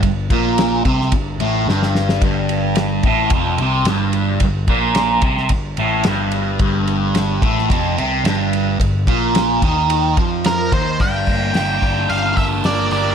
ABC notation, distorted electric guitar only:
X:1
M:4/4
L:1/8
Q:1/4=109
K:Gm
V:1 name="Distorted electric guitar" clef=bass
G,, B,,2 C, G,, A,, G,,2 | G,,3 A,, F,, C, G,,2 | G,, B,,2 C, G,, A,, G,,2 | G,,3 A,, F,, C, G,,2 |
G,, B,,2 E,2 F,2 E, | G,, B, G D B, D B, G |]